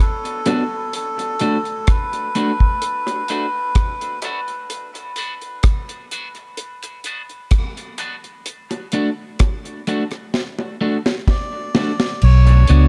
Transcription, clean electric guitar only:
0.47 B3 D4 F#4
1.41 A3 D4 F#4
2.35 A3 D4 F#4
3.30 A3 D4 F#4
4.24 A3 D4 F#4
5.18 B3 D4 F#4
6.12 B3 D4 F#4
6.36 muted clean electric guitar stroke
7.06 B3 D4 F#4
7.99 B3 D4 F#4
8.93 A3 D4 F#4
9.88 A3 D4 F#4
10.81 A3 D4 F#4
11.75 A3 D4 F#4
12.69 B3 D4 F#4

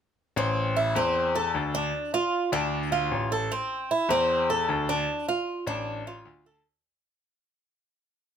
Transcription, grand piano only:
0.36 A1
0.95 E2
1.55 D2
2.52 D2
3.11 A1
4.09 E2
4.69 D2
5.67 A1
6.25 D2

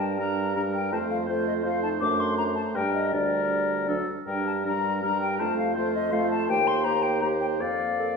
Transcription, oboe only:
Already playing: A#4
0.19 A#4
0.56 A#4
0.93 C5
1.29 C5
1.65 C5
2.01 C5
2.76 A#4
3.13 A#4
3.88 A4
4.27 A#4
4.65 A#4
5.03 A#4
5.40 C5
5.76 C5
6.13 C5
6.50 C5
6.85 C5
7.22 C5
7.61 D5

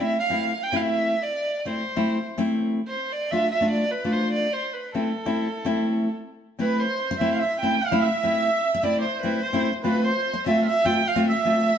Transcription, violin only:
0.00 E5
0.20 F5
0.63 G5
0.76 F5
0.81 E5
1.23 D5
1.59 D5
1.67 C5
2.88 C5
3.12 D5
3.31 E5
3.52 E5
3.71 D5
3.91 B4
4.12 C5
4.33 D5
4.53 C5
4.73 B4
4.96 A4
6.60 B4
6.79 C5
7.19 E5
7.34 F5
7.39 E5
7.60 G5
7.81 F5
8.00 E5
8.83 D5
9.01 C5
9.22 B4
9.43 C5
9.85 B4
10.05 C5
10.47 E5
10.66 E5
10.85 G5
11.07 F5
11.28 E5

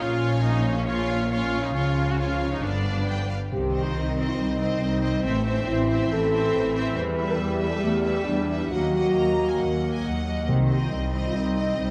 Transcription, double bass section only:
0.00 A#1
1.75 C#2
2.64 G1
3.51 C2
3.96 C2
4.39 C2
4.81 C2
5.24 A1
5.68 A1
6.11 A1
6.55 A1
6.97 E2
7.40 E2
7.84 E2
8.28 E2
8.72 D#2
9.15 D#2
9.61 D#2
10.05 D#2
10.50 C2
10.93 C2
11.37 C2
11.79 C2

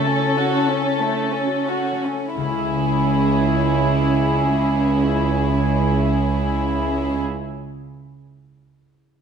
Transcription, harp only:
Already playing: C#3 A3 F#4
0.18 E4
0.58 F#4
1.01 A4
1.46 F#4
1.92 A3
2.37 C#3
2.44 C#4
2.51 E4
2.58 G#4
2.65 E5

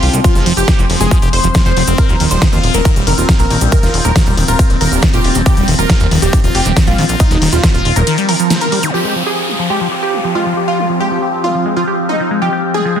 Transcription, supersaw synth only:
Already playing: F4
0.24 F4
0.57 G4
1.00 G#4
1.33 C5
1.66 C5
1.98 A#4
2.31 C5
2.74 A#4
3.07 A#4
3.40 A#4
3.72 A#4
4.05 A#4
4.48 A#4
4.81 A#4
5.14 G4
5.46 G4
5.79 A#4
6.22 G4
6.55 G4
6.87 F4
7.20 D#4
7.53 F4
7.96 A#4
8.29 A#4
8.61 A#4
8.94 G4
9.27 G#4
9.70 G4
10.03 G4
10.35 F4
10.68 F4
11.00 G4
11.44 F4
11.77 F4
12.09 D#4
12.42 G4
12.74 G#4

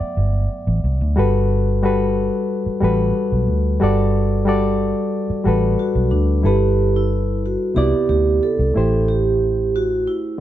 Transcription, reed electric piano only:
Already playing: F#3 A3 B3 D5 E5 F#5 G5
1.16 G3 F#4 A4 B4
1.82 G3 F#4 A4 B4
2.80 G3 F#4 A4 B4
3.80 G3 F#4 A4 D5
4.45 G3 F#4 A4 D5
5.44 G3 F#4 A4 B4
6.43 G3 E4 A4 B4
7.75 C3 B3 E4 D5
8.74 A3 E4 G4 C5

